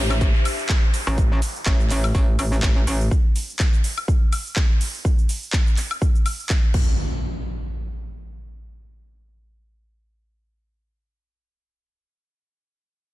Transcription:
Already playing: A1 D4 G4 C5 E5, downlifter
0.10 snare, high woodblock, shaker
0.21 kick, closed hi-hat, shaker
0.35 snare
0.45 closed hi-hat, open hi-hat, high woodblock, shaker
0.59 shaker
0.69 kick, snare, clap, closed hi-hat, shaker
0.94 closed hi-hat, open hi-hat, shaker
1.07 A1, shaker
1.18 kick, closed hi-hat, shaker
1.42 closed hi-hat, open hi-hat, shaker
1.56 shaker
1.66 A1, kick, snare, clap, closed hi-hat, shaker
1.80 shaker
1.90 clap, closed hi-hat, open hi-hat, shaker
2.04 snare, high woodblock, shaker
2.15 A1, kick, open hi-hat, shaker
2.39 A1, closed hi-hat, open hi-hat, high woodblock, shaker
2.52 snare, shaker
2.63 A1, kick, snare, clap, closed hi-hat, shaker
2.77 snare
2.87 A1, closed hi-hat, open hi-hat, shaker
3.01 shaker
3.11 kick, shaker
3.36 open hi-hat, shaker
3.49 shaker
3.59 kick, clap, shaker
3.74 shaker
3.84 open hi-hat, shaker
3.98 high woodblock, shaker
4.08 kick, shaker
4.33 open hi-hat, high woodblock, shaker
4.46 shaker
4.56 kick, clap, shaker
4.81 open hi-hat, shaker
4.95 shaker
5.05 kick, shaker
5.19 shaker
5.29 open hi-hat, shaker
5.43 shaker
5.53 kick, clap, shaker
5.67 shaker
5.77 clap, open hi-hat, shaker
5.91 high woodblock, shaker
6.02 kick, shaker
6.15 shaker
6.26 open hi-hat, high woodblock, shaker
6.39 shaker
6.49 kick, clap, shaker
6.74 kick, crash, impact

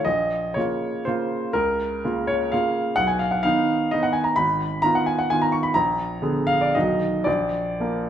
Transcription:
0.05 A#1 D#5
0.54 C#3 A#3 F4 C#5
1.05 C#3 A#3 F4 C5
1.53 C#2 A#4
2.04 C#3 A#3 F4
2.27 C#5
2.52 C#3 A#3 F4 F5
2.96 B1 F#5
3.07 G#5
3.19 F5
3.31 F#5
3.43 D#3 B3 D#4 F5
3.91 D#3 B3 D#4 D#5
4.03 F#5
4.13 G#5
4.24 A#5
4.36 G#1 B5
4.82 D#3 B3 F4 A#5
4.95 F#5
5.06 G#5
5.19 F#5
5.30 D#3 B3 F4 G#5
5.42 A#5
5.52 C#6
5.63 B5
5.74 A#1 A#5
6.22 D3 B3 G#4
6.47 F5
6.61 D5
6.75 B1 D#3 D#4 F#4 D#5
7.24 A#1 D5
7.80 F3 A#3 A#4

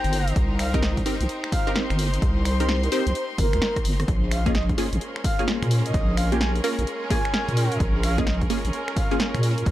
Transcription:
Already playing: D#4 G4 A#4 C5 G5 A#5 C6
0.04 G1, closed hi-hat
0.13 open hi-hat
0.28 closed hi-hat
0.36 C2, kick, closed hi-hat
0.59 F5, finger snap, open hi-hat
0.74 C4 D#4 G4 A#4 D#5, kick, closed hi-hat
0.83 D#5, snare
0.97 kick, closed hi-hat
1.06 C4 D#4 G4 A#4, open hi-hat
1.21 C2, closed hi-hat
1.29 closed hi-hat
1.44 finger snap
1.51 F5 C6, kick, open hi-hat
1.67 C4 D#4 G4 A#4, closed hi-hat
1.76 snare
1.90 G1, finger snap, closed hi-hat
1.99 open hi-hat
2.14 closed hi-hat
2.22 C2, kick, closed hi-hat
2.45 C5, finger snap, open hi-hat
2.60 C4 D#4 G4 A#4, closed hi-hat
2.69 snare
2.83 A#4, closed hi-hat
2.92 C4 D#4 G4 A#4 C5, open hi-hat
3.07 C2 C5, closed hi-hat
3.15 C5, closed hi-hat
3.38 G1 A#4, kick, open hi-hat
3.53 D#2, finger snap, closed hi-hat
3.62 cross-stick, snare
3.76 kick, cross-stick, closed hi-hat
3.85 G1, open hi-hat
4.00 cross-stick, closed hi-hat
4.08 A#1 G#3 C#4 F4 C6, kick, closed hi-hat
4.31 F5, finger snap, open hi-hat
4.46 A#3 C#4 F4 G#4 D#5, kick, closed hi-hat
4.55 D#5, snare
4.69 kick, closed hi-hat
4.78 A#3 C#4 F4 G#4, open hi-hat
4.93 A#1 A#4, closed hi-hat
5.01 closed hi-hat
5.16 finger snap
5.24 F5, kick, open hi-hat
5.39 A#3 C#4 F4 G#4, closed hi-hat
5.48 snare
5.62 A#2, finger snap, closed hi-hat
5.71 open hi-hat
5.86 D#5, closed hi-hat
5.94 A#1, kick, closed hi-hat
6.17 F5, finger snap, open hi-hat
6.32 A#3 C#4 F4 G4 G#5, closed hi-hat
6.41 G#5, snare
6.55 closed hi-hat
6.64 A#3 C#4 F4 A#4, open hi-hat
6.79 A#1, closed hi-hat
6.87 closed hi-hat
7.10 A#3 C#4 F4 G#4 G#5, kick, open hi-hat
7.25 finger snap, closed hi-hat
7.34 snare
7.48 A#2, closed hi-hat
7.57 open hi-hat
7.72 closed hi-hat
7.80 A#1, kick, closed hi-hat
8.03 F5, finger snap, open hi-hat
8.18 A#3 C#4 F4 G#4 D#5, kick, closed hi-hat
8.27 D#5, snare
8.41 kick, closed hi-hat
8.50 A#3 C#4 F4 G#4, open hi-hat
8.65 A#1, closed hi-hat
8.73 closed hi-hat
8.88 finger snap
8.96 F5, kick, open hi-hat
9.11 A#3 C#4 F4 G#4, closed hi-hat
9.20 snare
9.35 A#2, finger snap, closed hi-hat
9.43 open hi-hat
9.58 closed hi-hat
9.66 A#1, kick, closed hi-hat

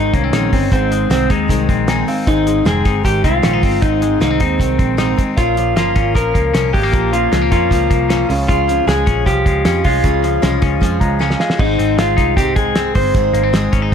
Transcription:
Already playing: G#1 G#2 D#3 G#3 C4 D#4 G#4 C5
0.14 C2 A#3 C#4, kick, closed hi-hat
0.24 C4
0.33 A#1 G#2 D#3 G#3 C4 D#4 G#4, snare, closed hi-hat
0.52 G1 G#3 C4 D#4 G#4, kick, open hi-hat
0.71 G#1 G#2 D#3 G#3 C4 D#4 G#4, kick, closed hi-hat
0.90 G#3 C4 D#4 G#4, closed hi-hat
1.10 C2 G#2 D#3 G#3 C4 D#4 G#4, snare, closed hi-hat
1.29 D#2 G#3 C4 D#4 G#4, kick, closed hi-hat
1.48 C2 D#3 G#3 C4 D#4 G#4, kick, closed hi-hat
1.69 A#1 C4, kick, closed hi-hat
1.87 G#2 D#3 G#3 C4 D#4 G#4 G#5, snare, closed hi-hat
2.07 G#3 C4 D#4 G#4 F5, open hi-hat
2.26 G#1 G#2 D#3 G#3 C4 D#4 G#4, kick, closed hi-hat
2.46 G#3 C4 D#4 G#4, closed hi-hat
2.65 F1 G#2 D#3 G#3 C4 D#4 G#4, snare, closed hi-hat
2.84 G1 G#3 C4 D#4 G#4, kick, snare, closed hi-hat
3.03 G#1 D#3 G#3 C4 D#4 G4 G#4, kick, closed hi-hat
3.24 C2 C4 F4, kick, closed hi-hat
3.42 A#1 G#2 D#3 G#3 C4 C#4 D#4 G#4, snare, closed hi-hat
3.53 D#4
3.61 G1 G#3 C4 D#4 G#4, kick, open hi-hat
3.82 G#1 G#2 D#3 G#3 C4 D#4 G#4, kick, closed hi-hat
4.01 G#3 C4 D#4 G#4, closed hi-hat
4.20 C2 G#2 D#3 G#3 A#3 C4 D#4 G#4, snare, closed hi-hat
4.31 C4
4.40 D#2 G#3 C4 D#4 G#4, kick, closed hi-hat
4.59 C2 D#3 G#3 C4 D#4 G#4, kick, closed hi-hat
4.79 A#1 C4, kick, closed hi-hat
4.97 G#2 D#3 G#3 C4 D#4 G#4, snare, closed hi-hat
5.16 G#3 C4 D#4 G#4, kick, closed hi-hat
5.37 A#1 A#2 F3 A#3 C#4 F4 A#4, kick, closed hi-hat
5.56 F3 A#3 C#4 F4 A#4, closed hi-hat
5.76 G1 A#2 F3 A#3 C#4 F4 A#4, snare, closed hi-hat
5.95 G#1 A#3 C#4 F4 A#4, kick, closed hi-hat
6.15 A#1 F3 A#3 C#4 F4 A#4, kick, closed hi-hat
6.34 C#2 A#3, kick, closed hi-hat
6.53 C2 A#2 F3 A#3 C#4 F4 A#4, snare, closed hi-hat
6.73 G#1 G#3 A#3 C#4 F4 G4 A#4, kick, open hi-hat
6.83 A#3
6.92 A#1 A#2 F3 A#3 C#4 F4 A#4, kick, closed hi-hat
7.12 F3 A#3 C#4 F4 A#4, closed hi-hat
7.32 C#2 A#2 F3 G#3 A#3 C#4 F4 A#4, snare, closed hi-hat
7.41 A#3
7.51 F2 A#3 C#4 F4 A#4, kick, closed hi-hat
7.71 C#2 F3 A#3 C#4 F4 A#4, kick, closed hi-hat
7.90 C2 A#3, kick, closed hi-hat
8.09 A#2 F3 A#3 C#4 F4 A#4, snare, closed hi-hat
8.29 C#2 C#3 G#3 C#4 F4 G#4, open hi-hat
8.48 C#3 G#3 C#4 F4 G#4, kick, closed hi-hat
8.67 F3 C#4 F4 G#4, closed hi-hat
8.87 C#2 C#3 G#3 C#4 F4 G#4, snare, closed hi-hat
9.06 A#1 C#4 F4 G#4, kick, closed hi-hat
9.26 C2 F3 G#3 C#4 F4 G4, kick, closed hi-hat
9.46 C#2 G#3, kick, closed hi-hat
9.65 F2 C#3 G#3 C#4 F4 G#4, snare, closed hi-hat
9.84 C2 G#3 C#4 F4 G#4, kick, open hi-hat
10.04 C#2 C#3 G#3 C#4 F4 G#4, kick, closed hi-hat
10.22 F3 C#4 F4 G#4, closed hi-hat
10.42 C2 C#3 G#3 C#4 F4 G#4, snare, closed hi-hat
10.61 C#2 C#4 F4 G#4, kick, snare, closed hi-hat
10.81 F2 F3 G#3 C#4 F4 G#4, kick, closed hi-hat
11.00 C#2 G#3 A#5, kick, closed hi-hat
11.19 C#3 G#3 C#4 F4 G#4 G#5, snare
11.30 snare
11.39 G#3 C#4 F4 G#4 F5, snare
11.50 snare
11.58 G#1 G#2 D#3 G#3 C4 D#4 G#4, kick, crash
11.79 G#1 C4, closed hi-hat
11.98 G#3 C4 D#4 F4 G#4, snare, closed hi-hat
12.17 C2 D#4, kick, snare, closed hi-hat
12.36 G#2 D#3 G#3 C4 D#4 G4 G#4, kick, closed hi-hat
12.56 G#3 G#4, kick, closed hi-hat
12.75 G#3 C4 D#4 G#4, snare, closed hi-hat
12.95 G1 G#3 C4 D#4 G#4 C5, kick, open hi-hat
13.14 G#1 G#2 D#3 G#3 C4 D#4 G#4, kick, closed hi-hat
13.33 G#1 A#3, closed hi-hat
13.43 C4
13.53 G#3 C4 D#4 G#4, snare, closed hi-hat
13.72 G#1 C#4, kick, closed hi-hat
13.82 D#4

